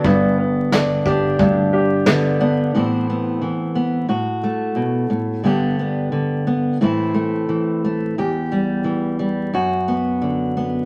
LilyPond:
<<
  \new Staff \with { instrumentName = "Upright piano" } { \time 4/4 \key a \dorian \tempo 4 = 88 b8 b8 d'8 g'8 d'8 g'8 b8 d'8 | r1 | r1 | r1 | }
  \new Staff \with { instrumentName = "Steel-string acoustic guitar" } { \clef bass \time 4/4 \key a \dorian << { r4. d'2 b8 | <e b c' e'>8 b4 b8 fis'8 a4. | <d b d' g'>8 b4 b8 <e a c' e'>8 a4 a8 | g'8 g4 g8 fis'8 b4 b8 | } \\ { <g, d>4 d4 g,4 d4 | a,4 e4 a,4 b,8 a,8 | g,4 d4 a,4 e4 | e,4 e4 fis,4 d4 | } >> }
  \new Staff \with { instrumentName = "Upright bass" } { \clef bass \time 4/4 \key a \dorian g,,2 d,8 r4. | r1 | r1 | r1 | }
  \new DrumStaff \with { instrumentName = "Drums" } \drummode { \time 4/4 bd4 sn8 bd8 bd4 sn4 | r4 r4 r4 r4 | r4 r4 r4 r4 | r4 r4 r4 r4 | }
>>